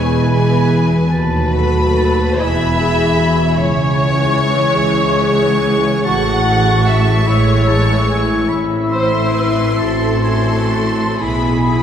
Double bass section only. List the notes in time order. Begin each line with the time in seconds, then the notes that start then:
Already playing: E1
1.12 D#2
2.40 E1
3.57 C#2
4.76 C#2
6.05 A1
7.28 A1
8.50 A1
9.79 A1
11.20 B1